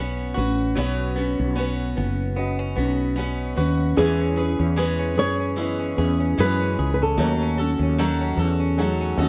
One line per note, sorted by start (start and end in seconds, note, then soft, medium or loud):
0.00 0.33 B1 medium
0.00 0.74 F#3 medium
0.00 0.25 B3 medium
0.00 0.37 B3 medium
0.00 1.16 B3 medium
0.00 0.25 C#4 medium
0.00 0.37 C#4 medium
0.00 1.56 C#4 medium
0.00 0.25 F#4 medium
0.00 0.34 F#4 medium
0.00 0.36 F#4 medium
0.00 0.35 B4 medium
0.00 4.00 B4 medium
0.00 0.29 C#5 medium
0.34 0.74 A1 medium
0.34 3.56 F#4 medium
0.34 0.76 F#4 medium
0.34 0.77 B4 medium
0.39 0.75 C#4 soft
0.76 1.35 B1 medium
0.76 3.97 F#3 medium
0.76 1.86 B3 medium
0.76 1.17 B3 loud
0.76 1.17 C#4 medium
0.76 1.86 C#4 medium
0.76 1.17 F#4 loud
0.76 1.87 F#4 medium
0.76 1.14 B4 loud
0.76 1.87 C#5 loud
1.16 1.97 B3 medium
1.16 1.56 C#4 soft
1.16 1.57 F#4 soft
1.16 1.57 B4 medium
1.39 1.93 B1 medium
1.56 2.82 B3 medium
1.56 2.36 C#4 medium
1.56 2.78 C#4 medium
1.56 2.76 F#4 medium
1.56 2.75 B4 medium
1.97 2.74 F#1 loud
1.97 2.36 B3 medium
2.36 3.46 B3 medium
2.36 2.59 B3 medium
2.36 3.46 C#4 medium
2.36 3.46 F#4 medium
2.36 3.47 D#5 medium
2.59 3.16 C#4 soft
2.76 3.53 B1 medium
2.76 4.23 B3 medium
2.76 3.16 C#4 soft
2.76 3.17 F#4 medium
2.76 3.17 B4 medium
3.16 3.57 B3 medium
3.16 3.58 C#4 medium
3.16 4.20 C#4 medium
3.16 3.57 F#4 medium
3.16 3.55 B4 medium
3.56 3.94 D#2 medium
3.56 3.97 C#4 soft
3.56 4.07 F#4 medium
3.56 3.98 F#4 medium
3.56 3.97 B4 medium
3.96 4.56 E2 loud
3.96 4.37 E3 medium
3.96 5.56 E3 medium
3.96 4.38 G#3 medium
3.96 5.06 B3 medium
3.96 5.07 C#4 medium
3.96 4.38 C#4 medium
3.96 5.07 E4 medium
3.96 4.74 G#4 loud
3.96 5.07 G#4 medium
3.96 4.37 G#4 medium
3.96 4.35 B4 medium
3.96 5.07 C#5 medium
4.20 4.59 C#4 medium
4.36 4.77 C#4 soft
4.36 4.76 G#4 medium
4.36 4.77 G#4 medium
4.36 4.77 B4 medium
4.59 5.18 E2 medium
4.59 4.99 C#4 medium
4.76 5.17 E3 medium
4.76 5.17 G#3 medium
4.76 5.18 C#4 medium
4.76 5.17 G#4 medium
4.76 5.16 G#4 loud
4.76 5.14 B4 loud
4.99 5.40 C#4 medium
5.16 5.94 F#2 medium
5.16 5.56 C#4 soft
5.16 5.57 G#4 soft
5.16 5.97 G#4 medium
5.16 5.57 B4 medium
5.16 6.34 C#5 loud
5.40 5.79 C#4 soft
5.56 7.17 E3 medium
5.56 5.97 G#3 medium
5.56 5.86 B3 medium
5.56 5.97 C#4 medium
5.56 5.86 C#4 medium
5.56 5.86 E4 medium
5.56 5.97 G#4 medium
5.56 5.86 G#4 medium
5.56 5.95 B4 medium
5.56 5.87 D#5 medium
5.80 6.20 C#4 medium
5.96 6.35 E2 loud
5.96 6.78 B3 medium
5.96 6.78 C#4 medium
5.96 6.38 C#4 soft
5.96 6.78 E4 medium
5.96 6.79 G#4 medium
5.96 6.38 G#4 soft
5.96 6.38 G#4 medium
5.96 6.37 B4 medium
5.96 6.79 C#5 medium
6.20 6.60 C#4 medium
6.38 6.75 F#2 medium
6.38 7.17 E3 medium
6.38 7.17 G#3 medium
6.38 7.18 C#4 medium
6.38 6.78 G#4 medium
6.38 7.18 G#4 medium
6.38 7.19 B4 loud
6.38 6.90 B4 medium
6.60 7.01 C#4 medium
6.78 7.15 C#2 medium
6.78 7.27 G#4 medium
6.94 7.01 B4 medium
7.02 7.42 C#4 medium
7.02 8.57 A4 medium
7.17 7.76 D#2 loud
7.17 7.58 D#3 medium
7.17 7.58 F#3 medium
7.17 8.77 F#3 medium
7.17 8.26 A3 medium
7.17 8.26 C#4 medium
7.17 7.58 C#4 medium
7.17 8.27 D#4 medium
7.17 8.27 F#4 medium
7.17 7.58 F#4 medium
7.17 7.56 A4 medium
7.17 8.27 C#5 medium
7.43 7.81 C#4 medium
7.58 7.98 C#4 soft
7.58 7.98 F#4 soft
7.58 7.98 A4 medium
7.79 8.34 D#2 medium
7.79 8.20 C#4 medium
7.98 8.38 D#3 loud
7.98 8.38 F#3 loud
7.98 8.38 C#4 loud
7.98 8.38 F#4 loud
7.98 8.38 A4 medium
7.98 8.36 A4 medium
8.21 8.59 C#4 medium
8.37 9.13 E2 medium
8.37 8.79 C#4 medium
8.37 8.79 F#4 medium
8.37 8.78 A4 medium
8.37 9.17 A4 medium
8.60 9.00 C#4 medium
8.77 9.29 F#3 medium
8.77 9.18 F#3 medium
8.77 9.06 A3 medium
8.77 9.06 C#4 medium
8.77 9.19 C#4 medium
8.77 9.06 D#4 medium
8.77 9.06 F#4 medium
8.77 9.07 G#4 medium
8.81 9.18 F#4 medium
8.81 9.16 A4 medium
9.01 9.29 C#4 medium
9.17 9.29 D#2 loud
9.17 9.29 A3 medium
9.17 9.29 C#4 medium
9.17 9.29 C#4 soft
9.17 9.29 D#4 medium
9.17 9.29 F#4 medium
9.17 9.29 A4 medium
9.17 9.29 D#5 loud